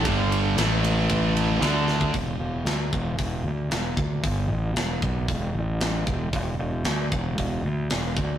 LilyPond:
<<
  \new Staff \with { instrumentName = "Tonewheel organ" } { \time 4/4 \key d \mixolydian \tempo 4 = 114 <g d' a'>4 <a e' b'>2 <d' a' e''>4 | r1 | r1 | r1 | }
  \new Staff \with { instrumentName = "Distorted electric guitar" } { \clef bass \time 4/4 \key d \mixolydian <g, d g>4 <a, e a>2 <d a d'>4 | r1 | r1 | r1 | }
  \new Staff \with { instrumentName = "Distorted electric guitar" } { \clef bass \time 4/4 \key d \mixolydian <g, d g>4 <a, e a>2 <d a d'>4 | r1 | r1 | r1 | }
  \new Staff \with { instrumentName = "Distorted electric guitar" } { \clef bass \time 4/4 \key d \mixolydian <g, d g>4 <a, e a>2 <d a d'>4 | r1 | r1 | r1 | }
  \new Staff \with { instrumentName = "Fingered electric bass" } { \clef bass \time 4/4 \key d \mixolydian g,,4 a,,2 d,4 | e,,8 e,,8 d,8 e,,8 e,,8 d,8 e,,8 d,8 | g,,8 a,,8 e,,8 b,,8 e,,8 a,,4 e,,8 | e,,8 e,,8 d,8 e,,8 e,,8 d,8 e,,8 d,8 | }
  \new DrumStaff \with { instrumentName = "Drums" } \drummode { \time 4/4 <bd cymr>8 cymr8 <cymr sn>8 cymr8 <bd cymr>8 cymr8 <cymr sn>8 sn16 bd16 | <hho bd>4 <hho sn>8 bd8 <hho bd>4 <hho sn>8 bd8 | <hho bd>4 <hho sn>8 bd8 <hho bd>4 <hho sn>8 bd8 | <hho bd>4 <hho sn>8 bd8 <hho bd>4 <hho sn>8 bd8 | }
>>